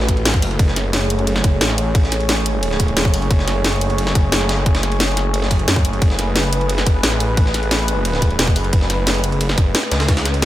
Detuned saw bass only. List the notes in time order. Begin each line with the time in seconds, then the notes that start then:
Already playing: A1
0.42 F#1
0.59 F#1
1.44 F#1
1.61 A1
2.97 E1
3.14 F#1
3.31 F#1
4.15 F#1
4.32 F#1
5.68 F#2
5.85 F#1
6.02 F#1
6.87 F#1
7.03 A1
8.39 E1
8.56 F#1
8.73 F#1
9.58 F#1
9.92 C#2